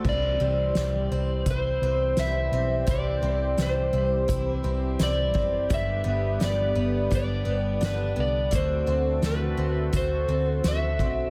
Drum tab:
CC |x-------|--------|--------|--------|
HH |--x-x-x-|x-x-x-x-|x-x-x-x-|x-x-x-x-|
SD |--o---o-|--o---o-|--o---o-|--o---o-|
BD |o---o---|o---o--o|o---o---|o---o--o|